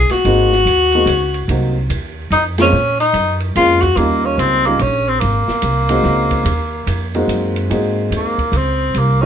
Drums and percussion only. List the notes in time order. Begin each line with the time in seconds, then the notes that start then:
0.10 snare, ride
0.25 ride
0.52 snare
0.67 hi-hat pedal, ride
0.92 ride
1.07 hi-hat pedal, ride
1.34 ride
1.49 ride
1.90 hi-hat pedal, ride
2.32 hi-hat pedal, ride
2.58 snare, ride
3.00 ride
3.14 hi-hat pedal, ride
3.40 ride
3.56 hi-hat pedal, ride
3.83 kick, ride
3.97 ride
4.39 hi-hat pedal, ride
4.65 ride
4.79 ride
5.21 ride
5.48 snare
5.62 hi-hat pedal, ride
5.89 ride
6.04 snare, hi-hat pedal
6.31 kick, ride
6.46 ride
6.87 hi-hat pedal, ride
7.15 ride
7.29 hi-hat pedal, ride
7.56 ride
7.71 ride
8.12 hi-hat pedal, ride
8.38 kick, ride
8.53 hi-hat pedal, ride
8.94 ride